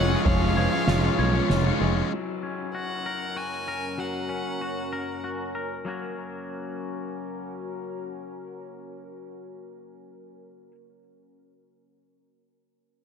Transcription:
0.00 0.15 F1 medium
0.00 0.25 F3 medium
0.00 0.12 G#3 medium
0.00 1.50 G#3 medium
0.00 0.12 C#4 medium
0.00 0.11 F4 medium
0.00 2.08 G#4 medium
0.00 0.24 C#5 medium
0.00 0.56 C#5 medium
0.00 2.08 D#5 medium
0.00 0.26 F#5 loud
0.00 2.08 G#5 medium
0.00 2.07 C#6 loud
0.11 0.26 G#3 medium
0.11 0.26 C#4 medium
0.11 0.27 F4 medium
0.11 0.27 C#5 medium
0.25 0.67 F1 loud
0.25 0.56 F3 loud
0.25 1.81 F3 medium
0.25 0.42 G#3 loud
0.25 0.41 C#4 loud
0.25 0.40 F4 loud
0.25 0.56 C#5 loud
0.25 0.57 C#5 loud
0.25 1.46 F5 medium
0.25 kick loud
0.25 ride medium
0.42 0.57 G#3 medium
0.42 0.57 C#4 medium
0.42 0.59 F4 medium
0.57 0.87 F3 medium
0.57 0.74 G#3 medium
0.57 0.72 C#4 medium
0.57 0.72 F4 medium
0.57 0.88 B4 medium
0.57 1.18 C#5 medium
0.57 0.71 C#5 medium
0.73 0.88 G#3 medium
0.73 0.88 C#4 medium
0.73 0.89 F4 medium
0.73 0.89 C#5 medium
0.87 1.08 F1 medium
0.87 1.17 F3 loud
0.87 1.18 G#3 loud
0.87 1.18 C#4 loud
0.87 1.48 F4 medium
0.87 1.19 F4 loud
0.87 1.49 C#5 medium
0.87 1.03 C#5 loud
0.87 snare medium
0.87 ride medium
1.04 1.36 C#4 medium
1.04 1.35 F4 medium
1.04 1.33 C#5 medium
1.18 1.39 B1 medium
1.18 1.65 F3 medium
1.18 1.35 G#3 medium
1.18 1.33 C#4 medium
1.18 1.32 F4 medium
1.18 2.12 C#5 medium
1.33 1.65 G#3 medium
1.33 1.65 C#4 medium
1.33 1.63 F4 medium
1.33 1.65 C#5 medium
1.50 1.70 F1 loud
1.50 2.12 F4 medium
1.50 2.12 C#5 medium
1.50 snare loud
1.50 ride medium
1.64 1.79 G#3 medium
1.64 1.79 C#4 medium
1.64 1.80 F4 medium
1.64 1.82 C#5 medium
1.80 2.02 F1 medium
1.80 2.09 F3 medium
1.80 1.95 G#3 medium
1.80 2.12 G#3 medium
1.80 1.94 C#4 medium
1.80 1.93 F4 medium
1.80 1.95 C#5 medium
1.94 2.10 G#3 medium
1.94 2.10 C#4 medium
1.94 2.09 F4 medium
1.94 2.10 C#5 medium
2.12 5.83 F#2 medium
2.12 3.98 F#3 medium
2.12 5.83 F#3 medium
2.12 5.83 C#4 medium
2.12 5.83 A#4 medium
2.12 5.83 C#5 medium
2.43 4.29 C#4 soft
2.75 3.35 F#4 soft
2.75 3.39 F#5 medium
3.06 3.67 A#4 soft
3.36 4.60 F#4 soft
3.36 4.01 G#5 medium
3.68 4.91 A#4 soft
3.98 5.55 F#3 soft
3.98 5.24 F#5 medium
4.29 5.86 C#4 soft
4.61 5.23 F#4 soft
4.93 5.54 A#4 soft
5.24 5.86 F#4 soft
5.55 5.86 A#4 soft
5.85 10.71 F#3 soft
5.85 10.72 A#3 medium
5.85 10.38 C#4 medium
5.85 10.73 C#4 medium
5.85 10.38 F#4 medium
5.85 10.74 F#4 medium
5.85 10.37 A#4 medium
5.89 10.75 A#4 medium

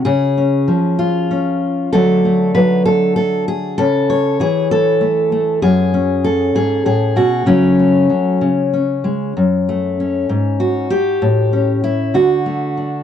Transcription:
0.05 0.68 C#3 medium
0.05 1.61 G#4 loud
0.38 1.30 C#4 soft
0.68 1.89 F3 medium
0.99 1.93 F4 medium
1.31 1.89 C#4 soft
1.93 3.75 D3 medium
1.93 2.53 F#3 soft
1.93 2.25 A3 medium
1.93 3.76 D4 medium
1.93 2.54 A4 loud
2.25 5.00 A3 soft
2.55 3.75 F#3 medium
2.55 2.85 B4 loud
2.85 3.15 A4 loud
3.16 3.47 A4 medium
3.48 3.79 G#4 medium
3.78 4.40 C#3 medium
3.78 4.40 A4 loud
4.10 5.01 C#5 loud
4.40 5.62 E3 medium
4.40 4.71 G#4 loud
4.71 5.62 A4 loud
5.01 5.32 A3 soft
5.32 5.93 A3 soft
5.62 6.55 F#2 medium
5.62 6.54 G#4 loud
5.94 7.47 C#4 soft
6.24 7.16 A4 loud
6.55 6.85 G#2 medium
6.55 6.85 G#4 loud
6.85 7.17 A2 medium
6.85 7.46 G#4 medium
7.16 7.46 B2 medium
7.16 7.47 F#4 medium
7.46 8.09 C#3 medium
7.46 8.08 F#3 medium
7.46 7.78 A3 soft
7.46 8.72 C#4 medium
7.79 8.42 A3 soft
8.10 8.38 F#3 medium
8.41 9.32 C#3 medium
8.74 9.33 C#4 soft
9.04 9.32 G#3 medium
9.37 10.29 F#2 medium
9.69 10.30 A3 medium
10.00 10.90 C#4 medium
10.29 11.19 G#2 medium
10.60 11.22 F#4 medium
10.90 11.83 G4 medium
11.22 12.11 A2 medium
11.53 12.11 C#4 soft
11.84 12.15 E4 medium
12.14 13.03 D3 medium
12.14 13.03 F#4 medium
12.46 13.03 A3 soft
12.77 13.03 D4 soft

